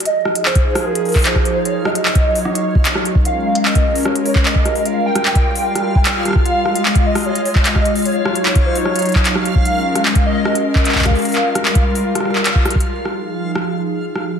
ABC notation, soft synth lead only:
X:1
M:4/4
L:1/8
Q:1/4=150
K:Fm
V:1 name="Soft synth lead"
e2 c2 B2 c2 | d e6 z | f2 e2 d2 e2 | f g6 z |
f3 e d2 e2 | d3 c d3 z | f3 e3 e f- | f6 z2 |
z8 |]